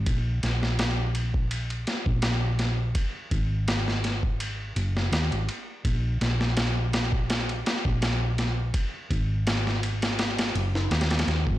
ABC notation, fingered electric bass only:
X:1
M:4/4
L:1/16
Q:"Swing 16ths" 1/4=83
K:Abmix
V:1 name="Fingered electric bass" clef=bass
B,,,2 B,,,8 z B,,,4- B,,, | z2 A,,,8 G,,,2 E,, A,,, z2 | B,,,2 B,,,8 z B,,,4- B,,, | z2 A,,,8 G,,,2 E,,2 E,, A,,, |]